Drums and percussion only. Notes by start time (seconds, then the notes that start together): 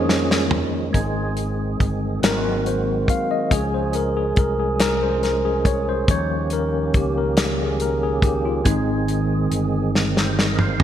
0.09 snare
0.31 snare
0.51 floor tom
0.94 kick, closed hi-hat
1.37 closed hi-hat
1.80 kick, closed hi-hat
2.23 snare, closed hi-hat
2.66 closed hi-hat
3.08 kick, closed hi-hat
3.51 kick, closed hi-hat
3.93 closed hi-hat
4.36 kick, closed hi-hat
4.80 snare, closed hi-hat
5.23 snare, closed hi-hat
5.65 kick, closed hi-hat
6.08 kick, closed hi-hat
6.50 closed hi-hat
6.94 kick, closed hi-hat
7.37 snare, closed hi-hat
7.80 closed hi-hat
8.22 kick, closed hi-hat
8.65 kick, closed hi-hat
9.08 closed hi-hat
9.52 closed hi-hat
9.95 snare
10.17 snare
10.39 snare
10.59 mid tom
10.80 floor tom